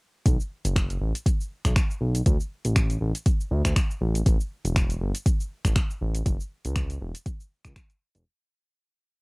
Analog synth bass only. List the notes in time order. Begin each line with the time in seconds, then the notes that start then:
0.26 B1
0.65 F#1
1.01 A1
1.65 B1
2.01 B1
2.26 D2
2.65 A1
3.01 A1
3.51 D2
3.65 D2
4.01 A1
4.26 A1
4.65 E1
5.01 G1
5.65 A1
6.01 A1
6.26 F#1
6.65 C#2
7.01 E1
7.65 C#2
8.15 E1